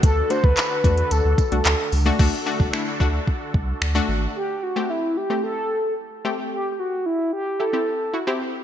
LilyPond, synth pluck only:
\new Staff \with { instrumentName = "Synth pluck" } { \time 4/4 \key d \mixolydian \tempo 4 = 111 <a d' fis'>16 r16 <a d' fis'>8 r8 <a d' fis'>8 r8. <a d' fis'>8 r8 <a d' fis'>16 | <a d' fis'>16 r16 <a d' fis'>16 r16 <a d' e'>16 r16 <a d' fis'>8. r4 <a d' fis'>8. | r8. <a c' g'>8 r8 <a c' g'>8. r4 <a c' g'>8 | r2 <e' g'>16 <c' e' g'>16 r8 <e' fis'>16 <c' e' g'>8. | }